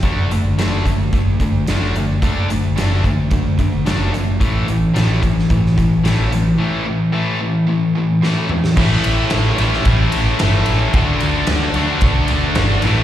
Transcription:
<<
  \new Staff \with { instrumentName = "Distorted electric guitar" } { \time 4/4 \key a \major \tempo 4 = 110 r1 | r1 | r1 | r1 |
<a, e a cis' e'>4. <a, e a cis' e'>2~ <a, e a cis' e'>8 | <d a d' fis'>4. <d a d' fis'>2 <a, e a cis' e'>8 | }
  \new Staff \with { instrumentName = "Distorted electric guitar" } { \clef bass \time 4/4 \key a \major <d a d'>8 <d a>8 <d a d'>8 <d a>8 <d a>8 <d a>8 <d a d'>8 <d a>8 | <d a d'>8 <d a>8 <d a d'>8 <d a>8 <d a>8 <d a>8 <d a d'>8 <d a>8 | <a, e a>8 <a, e>8 <a, e a>8 <a, e>8 <a, e>8 <a, e>8 <a, e a>8 <a, e>8 | <a, e a>8 <a, e>8 <a, e a>8 <a, e>8 <a, e>8 <a, e>8 <a, e a>8 <a, e>8 |
<a, e a>4. <a, e a>4. <a, e a>4 | <d a d'>4. <d a d'>4. <d a d'>8 <a, e a>8 | }
  \new Staff \with { instrumentName = "Distorted electric guitar" } { \clef bass \time 4/4 \key a \major <d a d'>8 <d a>8 <d a d'>8 <d a>8 <d a>8 <d a>8 <d a d'>8 <d a>8 | <d a d'>8 <d a>8 <d a d'>8 <d a>8 <d a>8 <d a>8 <d a d'>8 <d a>8 | <a, e a>8 <a, e>8 <a, e a>8 <a, e>8 <a, e>8 <a, e>8 <a, e a>8 <a, e>8 | <a, e a>8 <a, e>8 <a, e a>8 <a, e>8 <a, e>8 <a, e>8 <a, e a>8 <a, e>8 |
<a, e a>2 <a, e a>2 | <d a d'>2 <d a d'>4. <a, e a>8 | }
  \new Staff \with { instrumentName = "Picked electric bass" } { \clef bass \time 4/4 \key a \major fis,,8 fis,,8 fis,,8 fis,,8 fis,,4 fis,,8 fis,,8 | fis,,8 fis,,8 fis,,8 fis,,8 fis,,4 fis,,8 fis,,8 | a,,8 a,,8 a,,8 a,,8 a,,4 a,,8 a,,8 | r1 |
a,,8 a,,8 a,,8 a,,8 a,,8 a,,8 g,,8 a,,8 | d,8 d,8 d,8 d,8 b,,8 d,8 g,,8 a,,8 | }
  \new DrumStaff \with { instrumentName = "Drums" } \drummode { \time 4/4 <hh bd>8 hh8 <hh sn>8 <hh bd>8 <hh bd>8 <hh bd>8 <hh sn>8 hh8 | <hh bd>8 hh8 <hh sn>8 <hh bd>8 <hh bd>8 <hh bd>8 <hh sn>8 hh8 | <hh bd>8 hh8 <hh sn>8 <hh bd>16 sn16 <hh bd>16 sn16 <hh bd>8 <hh sn>8 hh8 | r4 r4 r4 sn8 toml16 sn16 |
<cymc bd>8 cymr8 <cymr sn>8 cymr16 sn16 <bd cymr>8 cymr8 <cymr sn>8 cymr8 | <bd cymr>8 cymr8 <cymr sn>8 cymr8 <bd cymr>8 cymr8 <cymr sn>8 cymr8 | }
>>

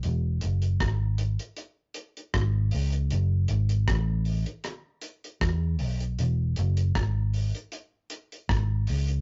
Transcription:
<<
  \new Staff \with { instrumentName = "Fingered electric bass" } { \clef bass \time 4/4 \key e \mixolydian \tempo 4 = 78 e,,8 fis,,8 gis,,8. r4 r16 gis,,8 cis,8 | fis,,8 gis,,8 a,,8. r4 r16 e,8 b,,8 | e,,8 fis,,8 gis,,8. r4 r16 gis,,8 cis,8 | }
  \new DrumStaff \with { instrumentName = "Drums" } \drummode { \time 4/4 hh8 hh16 hh16 <hh bd ss>8 hh16 hh16 hh8 hh16 hh16 <hh bd ss>8 hho16 hh16 | hh8 hh16 hh16 <hh bd ss>8 hho16 hh16 <hh ss>8 hh16 hh16 <hh bd ss>8 hho16 hh16 | hh8 hh16 hh16 <hh bd ss>8 hho16 hh16 hh8 hh16 hh16 <hh bd ss>8 hho16 hh16 | }
>>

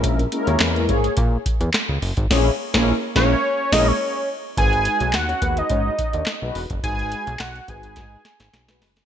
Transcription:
<<
  \new Staff \with { instrumentName = "Analog synth lead" } { \time 4/4 \key gis \minor \tempo 4 = 106 r1 | r4. cis''4 dis''16 cis''8. r8 | gis''4 fis''8. dis''4.~ dis''16 r8 | gis''4 fis''8 gis''2 r8 | }
  \new Staff \with { instrumentName = "Analog polysynth" } { \time 4/4 \key gis \minor r8. <ais gis' cis''>16 r8 <ais gis' cis''>8 r2 | <ais gis' cis''>8 r16 <ais gis' cis''>8 r16 <ais gis' cis''>8 r8 <ais gis' cis''>8 r4 | r8. <b b'>16 r16 <cis' cis''>16 <b b'>16 r16 <cis' cis''>16 r16 <dis' dis''>8 r4 | r1 | }
  \new Staff \with { instrumentName = "Analog polysynth" } { \time 4/4 \key gis \minor <gis ais cis' e' ais'>16 r16 <gis ais cis' e' ais'>4 r2 r8 | <gis ais cis' e' gis'>8 r16 <gis ais cis' e' ais'>8 r16 <gis ais cis' e' ais'>8 r8 <gis ais cis' e' ais'>8 r4 | <gis dis' fis' b'>8. r8. <gis dis' fis' b'>4 r8. <gis dis' fis' b'>8 r16 | <gis dis' fis' b'>8. r8. <gis dis' fis' b'>4 r8. <gis dis' fis' b'>8 r16 | }
  \new Staff \with { instrumentName = "Analog synth bass" } { \clef bass \time 4/4 \key gis \minor ais,,8. dis,16 e,8 gis,8 ais,8 r16 e,16 r16 cis,16 fis,,16 gis,,16 | ais,,8 r16 ais,,8 r16 ais,,8 r8 ais,,8 r4 | gis,,8. b,,16 dis,8 dis,8 gis,8 r16 dis,16 r16 b,,16 e,,16 fis,,16 | gis,,8. b,,16 b,,8 gis,,8 gis,8 r16 gis,,16 b,,8 fis,,8 | }
  \new DrumStaff \with { instrumentName = "Drums" } \drummode { \time 4/4 <hh bd>16 hh16 hh16 hh16 <hc hh sn>16 hh16 <hh bd>16 hh16 <hh bd>8 <hh bd>16 hh16 <hc hh sn>8 hho16 <hh bd>16 | <cymc bd sn>8. <bd sn>16 r8 <bd sn>8 r8 <cymc bd sn>8 r4 | <hh bd>16 hh16 hh16 hh16 <hc hh sn>16 hh16 <hh bd>16 hh16 <hh bd>8 <hh bd>16 hh16 <hc hh sn>8 hho16 <hh bd>16 | <hh bd>16 hh16 hh16 hh16 <hc hh sn>16 hh16 <hh bd>16 hh16 <hh bd sn>8 <hh sn>16 <hh sn>16 <hh sn>16 sn16 <hho sn>16 <hh sn>16 | }
>>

